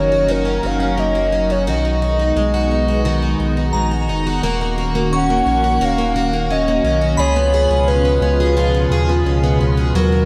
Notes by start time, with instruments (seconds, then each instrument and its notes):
Already playing: sub bass F#1, twelve-string acoustic guitar D#3 A#3 C#4 F#4, analog synth pad F#3 C#4 D#4 A#4, soft synth lead C#5
0.12 twelve-string acoustic guitar F#4
0.28 twelve-string acoustic guitar D#3 F#4, soft synth lead A#4
0.45 twelve-string acoustic guitar C#4
0.63 sub bass F#1, twelve-string acoustic guitar F#4, soft synth lead F5
0.80 twelve-string acoustic guitar C#4
0.98 twelve-string acoustic guitar A#3, soft synth lead D#5
1.15 twelve-string acoustic guitar F#4
1.32 twelve-string acoustic guitar C#4
1.50 twelve-string acoustic guitar F#4, soft synth lead C#5
1.67 sub bass B1, twelve-string acoustic guitar D#3 F#4, analog synth pad G#3 B3, soft synth lead D#5
1.85 twelve-string acoustic guitar D#4
2.02 twelve-string acoustic guitar F#4
2.19 twelve-string acoustic guitar D#4
2.36 sub bass B1, twelve-string acoustic guitar G#3
2.54 twelve-string acoustic guitar F#4
2.71 twelve-string acoustic guitar D#4
2.88 twelve-string acoustic guitar F#4
3.05 twelve-string acoustic guitar D#3 F#4
3.22 twelve-string acoustic guitar D#4
3.40 sub bass B1, twelve-string acoustic guitar F#4
3.57 twelve-string acoustic guitar D#4
3.73 sub bass A#1, twelve-string acoustic guitar G#3, synth bell A#5
3.91 twelve-string acoustic guitar F#4
4.08 sub bass F1, twelve-string acoustic guitar D#4
4.27 twelve-string acoustic guitar F#4
4.42 sub bass D#1, analog synth pad D#3 A#3 C#4 F#4, twelve-string acoustic guitar A#3 F#4
4.61 twelve-string acoustic guitar A#3
4.78 twelve-string acoustic guitar F#4
4.95 twelve-string acoustic guitar A#3
5.13 twelve-string acoustic guitar C#4, soft synth lead F#5, synth bell C#6
5.30 twelve-string acoustic guitar A#3
5.46 sub bass A#1, twelve-string acoustic guitar C#4
5.64 twelve-string acoustic guitar F#4
5.81 sub bass D#1, twelve-string acoustic guitar A#3 F#4
5.85 soft synth lead F5
5.98 twelve-string acoustic guitar A#3
6.16 twelve-string acoustic guitar F#4
6.33 twelve-string acoustic guitar A#3
6.50 twelve-string acoustic guitar C#4, soft synth lead D#5
6.68 twelve-string acoustic guitar A#3
6.84 sub bass B1, twelve-string acoustic guitar C#4
7.01 twelve-string acoustic guitar F#4
7.17 sub bass C#2, analog synth pad B2 C#3 G#3 F4, twelve-string acoustic guitar F3 G#4, soft synth lead C#5, synth bell B5
7.36 twelve-string acoustic guitar B3
7.54 twelve-string acoustic guitar G#4
7.70 sub bass C#2, twelve-string acoustic guitar B3
7.88 twelve-string acoustic guitar C#4, soft synth lead B4
8.05 twelve-string acoustic guitar B3
8.21 sub bass C#2, twelve-string acoustic guitar C#4
8.40 twelve-string acoustic guitar G#4
8.57 twelve-string acoustic guitar F3 G#4
8.74 twelve-string acoustic guitar B3
8.91 sub bass D#2, twelve-string acoustic guitar G#4
9.09 twelve-string acoustic guitar B3
9.25 sub bass C#2, twelve-string acoustic guitar C#4
9.44 twelve-string acoustic guitar B3
9.60 sub bass C#2, twelve-string acoustic guitar C#4
9.77 twelve-string acoustic guitar G#4
9.94 sub bass D#2, analog synth pad D#3 C#4 A#4, twelve-string acoustic guitar F#3 F#4, soft synth lead A#4
10.12 twelve-string acoustic guitar A#3